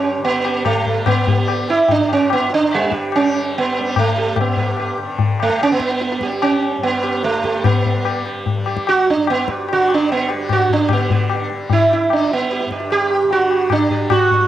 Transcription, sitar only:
0.00 0.24 C#4 medium
0.00 0.23 G4 soft
0.25 0.65 B3 medium
0.45 0.64 G4 soft
0.65 1.06 A3 medium
1.07 1.71 B3 medium
1.28 1.47 G4 soft
1.49 1.68 G4 soft
1.70 1.91 E4 medium
1.91 2.12 D4 loud
2.13 2.32 C#4 medium
2.33 2.51 B3 medium
2.54 2.74 D4 loud
2.74 2.93 G3 medium
2.94 3.12 G4 soft
3.16 3.57 C#4 medium
3.58 3.95 B3 medium
3.99 4.40 A3 medium
4.18 4.36 G4 soft
4.41 4.97 B3 medium
4.59 4.78 G4 soft
4.79 4.98 G4 soft
5.42 5.62 A3 medium
5.63 5.72 C#4 loud
5.72 6.29 B3 medium
6.23 6.41 G4 soft
6.42 6.83 C#4 medium
6.83 7.24 B3 medium
7.04 7.23 G4 soft
7.24 7.65 A3 medium
7.44 7.63 G4 soft
7.65 8.22 B3 medium
8.05 8.24 G4 soft
8.26 8.45 G4 soft
8.67 8.86 G4 soft
8.89 9.09 F#4 loud
9.10 9.29 D4 medium
9.30 9.48 B3 medium
9.50 9.68 G4 soft
9.72 9.91 F#4 medium
9.94 10.11 D4 medium
10.12 10.29 B3 medium
10.30 10.48 G4 soft
10.53 10.72 F#4 loud
10.73 10.92 D4 medium
10.90 11.48 B3 medium
10.90 11.09 G4 soft
11.12 11.30 G4 soft
11.73 11.92 E4 medium
11.93 12.12 E4 medium
12.13 12.32 D4 medium
12.33 12.69 B3 medium
12.52 12.70 G4 soft
12.72 12.90 G4 soft
12.92 13.32 G4 loud
13.32 13.73 F#4 loud
13.72 14.13 D4 medium
13.91 14.10 G4 soft
14.12 14.48 F#4 medium

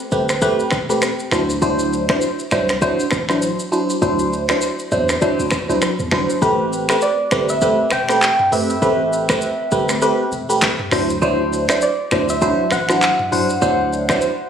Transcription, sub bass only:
0.12 0.52 G1 medium
0.72 1.12 E1 medium
1.32 2.08 D2 loud
2.52 2.92 C2 loud
3.12 3.52 A1 medium
4.02 4.53 D2 loud
4.92 5.17 E2 medium
5.39 5.50 D2 medium
5.69 5.80 C2 medium
5.99 6.10 E2 medium
6.12 6.27 G1 medium
6.42 6.93 A1 loud
7.32 7.72 G1 medium
7.92 8.32 E1 medium
8.82 9.33 A1 loud
9.72 10.12 G1 medium
10.32 10.72 E1 medium
10.92 11.68 D2 loud
12.12 12.52 D2 loud
12.72 13.12 A1 medium
13.62 14.13 D2 loud

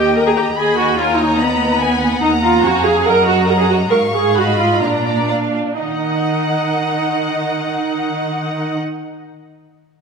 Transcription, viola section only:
0.00 0.16 G4 medium
0.16 0.20 A#4 medium
0.27 0.31 G#4 medium
0.37 0.45 G4 medium
0.58 0.78 G#4 medium
0.78 0.98 F#4 medium
0.99 1.19 F4 medium
1.19 1.40 D#4 medium
1.40 2.22 B3 medium
2.21 2.29 D#4 medium
2.42 2.63 F4 medium
2.63 2.84 F#4 medium
2.84 3.05 G#4 medium
3.05 3.26 A#4 medium
3.26 3.47 F#4 medium
3.47 3.58 A#4 medium
3.58 3.69 G#4 medium
3.69 3.77 F#4 medium
3.90 3.98 A#4 medium
4.13 4.35 G#4 soft
4.35 4.58 F#4 medium
4.58 4.81 F4 soft
4.81 5.78 D4 soft
5.78 8.78 D#4 soft

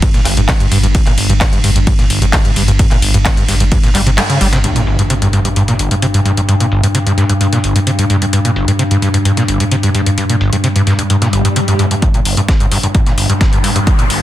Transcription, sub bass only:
0.14 0.25 G1 medium
0.25 0.37 G1 loud
0.37 0.48 G1 medium
0.72 0.83 G1 loud
0.83 0.94 G1 medium
1.07 1.17 G1 medium
1.18 1.29 G1 loud
1.30 1.41 G1 medium
1.64 1.75 G1 loud
1.76 1.87 G1 medium
1.99 2.09 G1 medium
2.10 2.21 G1 loud
2.22 2.33 G1 medium
2.56 2.67 G1 loud
2.68 2.79 G1 medium
2.91 3.02 G1 medium
3.02 3.14 G1 loud
3.14 3.25 G1 medium
3.49 3.60 G1 loud
3.60 3.71 G1 medium
3.83 3.94 G1 medium
3.95 4.06 G1 loud
4.07 4.18 G1 medium
4.41 4.52 G1 loud
4.53 4.64 G1 medium

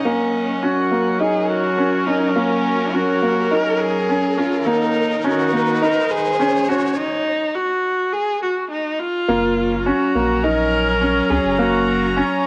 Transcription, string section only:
0.00 1.58 D#5 medium
0.00 6.97 F#5 medium
0.06 4.67 F#3 medium
0.36 5.59 C#4 medium
0.36 6.98 A#4 medium
4.66 6.97 D#3 medium
4.71 6.98 D#4 medium
9.29 12.47 F#3 medium
9.56 12.47 C#4 medium
9.80 12.47 A#5 medium

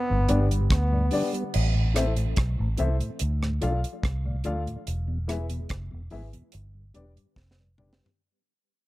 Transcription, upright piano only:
0.28 0.44 D4 medium
0.28 0.44 G4 medium
0.28 0.45 B4 medium
0.28 0.45 D5 medium
0.93 1.01 B4 soft
0.93 1.01 D5 soft
1.12 1.27 D4 medium
1.12 1.28 G4 medium
1.12 1.28 B4 medium
1.12 1.28 D5 loud
1.95 2.11 E4 medium
1.95 2.11 A4 medium
1.95 2.11 C5 medium
1.95 2.11 E5 medium
2.79 2.94 E4 medium
2.79 2.94 A4 medium
2.79 2.94 C5 medium
2.79 2.95 E5 medium
3.62 3.77 F4 medium
3.62 3.77 A4 medium
3.62 3.77 D5 medium
3.62 3.78 F5 loud
4.26 4.34 D5 soft
4.26 4.34 F5 soft
4.45 4.60 F4 medium
4.45 4.61 A4 medium
4.45 4.61 D5 medium
4.45 4.61 F5 medium
5.28 5.44 E4 medium
5.28 5.44 G#4 medium
5.28 5.44 B4 medium
5.28 5.44 E5 medium
6.11 6.27 E4 medium
6.11 6.27 G#4 medium
6.11 6.27 B4 medium
6.11 6.27 E5 medium
6.94 7.10 D4 medium
6.94 7.10 G4 medium
6.94 7.10 B4 medium
6.94 7.11 D5 loud
7.59 7.67 B4 soft
7.59 7.67 D5 soft
7.78 7.93 D4 medium
7.78 7.94 G4 medium
7.78 7.94 B4 medium
7.78 7.94 D5 medium

